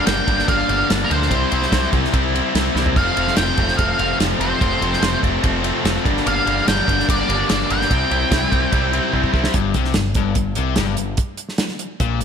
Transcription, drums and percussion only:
0.07 snare, ride
0.28 kick, ride
0.39 snare
0.48 kick, ride
0.69 ride
0.90 snare, ride
1.11 ride
1.22 snare
1.31 kick, ride
1.52 ride
1.62 snare
1.72 kick, snare, ride
1.93 kick, ride
2.04 snare
2.14 kick, ride
2.36 ride
2.55 snare, ride
2.76 snare
2.86 floor tom
2.96 kick, crash
3.17 ride
3.27 snare
3.37 snare, ride
3.57 kick, ride
3.68 snare
3.79 kick, ride
3.99 ride
4.20 snare, ride
4.41 ride
4.61 kick, ride
4.82 ride
4.93 snare
5.02 snare, ride
5.23 kick, ride
5.44 kick, ride
5.64 ride
5.85 snare, ride
6.05 kick, ride
6.17 snare
6.27 ride
6.47 ride
6.68 snare, ride
6.88 kick, ride
7.00 snare
7.09 kick, ride
7.30 ride
7.49 snare, ride
7.70 ride
7.81 snare
7.91 kick, ride
8.11 ride
8.32 kick, snare, ride
8.52 kick, ride
8.73 kick, ride
8.93 ride
9.13 kick
9.24 kick
9.34 kick
9.44 snare
9.54 kick, closed hi-hat
9.74 kick, closed hi-hat
9.85 snare
9.94 snare, closed hi-hat
10.14 kick, closed hi-hat
10.35 kick, closed hi-hat
10.55 closed hi-hat
10.76 snare, closed hi-hat
10.97 closed hi-hat
11.17 kick, closed hi-hat
11.37 closed hi-hat
11.49 snare
11.58 snare, closed hi-hat
11.68 snare
11.79 closed hi-hat
12.00 kick, closed hi-hat
12.21 closed hi-hat

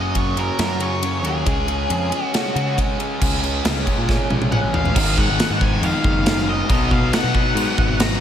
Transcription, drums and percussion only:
0.15 kick, ride
0.37 ride
0.59 snare, ride
0.80 ride
1.03 ride
1.24 ride
1.46 kick, ride
1.68 ride
1.90 ride
2.12 ride
2.34 snare, ride
2.56 ride
2.78 kick, ride
3.00 ride
3.21 kick, crash
3.44 crash
3.65 snare, crash
3.87 kick, crash
4.09 kick, snare
4.31 high tom
4.42 high tom
4.52 mid tom
4.74 floor tom
4.85 floor tom
4.96 kick, crash
5.18 kick
5.39 snare, crash
5.61 kick
5.83 crash
6.04 kick
6.26 snare, crash
6.38 snare
6.69 kick, crash
6.91 kick
7.13 snare, crash
7.35 kick
7.57 crash
7.78 kick
8.00 snare, crash

